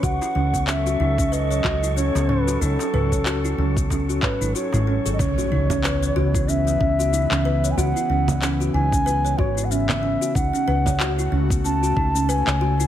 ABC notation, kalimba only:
X:1
M:4/4
L:1/16
Q:"Swing 16ths" 1/4=93
K:C#m
V:1 name="Kalimba"
F E C B, C F D C B c F E C B, C F | D C B c F E C B, C F c D F E C G | C F D C B c F E C B, C F D C B c | F E C B, C F D C B c F E C B, C F |
D C B c F E C B, C F D C B c F E |]